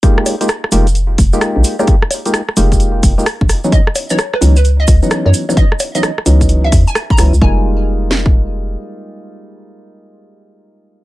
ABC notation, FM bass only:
X:1
M:4/4
L:1/16
Q:"Swing 16ths" 1/4=130
K:Fm
V:1 name="FM bass" clef=bass
z6 F,,,4 F,,, z2 B,,, z2 | z6 F,,,4 F,,, z2 B,,, z2 | z6 D,,4 D,, z2 _G,, z2 | z6 D,,4 _F,, z3 D,, D,, |
F,,,12 z4 | z16 |]